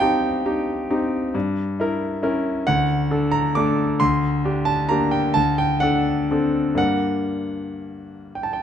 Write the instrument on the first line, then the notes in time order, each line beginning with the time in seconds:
grand piano
Already playing: G2 D#5 F5 A5
0.00 C4 D#4 G4 G5
0.45 D#4 G4
0.90 C4 D#4 G4
1.34 G2
1.80 E4 A#4
2.23 C#4 E4 A#4
2.67 D2 F#5
3.11 D4 A4
3.32 A#5
3.55 A3 D4 A4 D6
4.00 D2 C6
4.45 D4 G4
4.65 A5
4.89 A#3 D4 G4 A#5
5.11 G5
5.34 D2 A5
5.58 G5
5.80 D4 A4 F#5
6.31 C4 D4 A4
6.75 G2 A#3 D4 A#4 F#5
8.35 G5
8.43 A5
8.53 G5